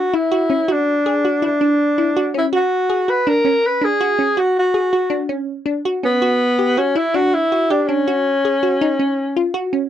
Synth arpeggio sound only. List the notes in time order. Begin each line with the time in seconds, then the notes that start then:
0.14 E4
0.32 F#4
0.50 C#4
0.68 F#4
1.06 G#4
1.25 F#4
1.42 E4
1.61 D4
1.98 E4
2.16 F#4
2.34 C#4
2.53 F#4
2.90 G#4
3.08 F#4
3.27 D4
3.45 C#4
3.81 D4
4.01 F#4
4.19 C#4
4.37 F#4
4.74 G#4
4.93 F#4
5.10 D4
5.29 C#4
5.66 D4
5.85 F#4
6.03 C#4
6.22 F#4
6.59 G4
6.77 F#4
6.95 E4
7.14 D4
7.52 F#4
7.70 G4
7.89 D4
8.08 F#4
8.45 G#4
8.63 F#4
8.81 D#4
8.99 C#4
9.36 F4
9.54 F#4
9.73 C#4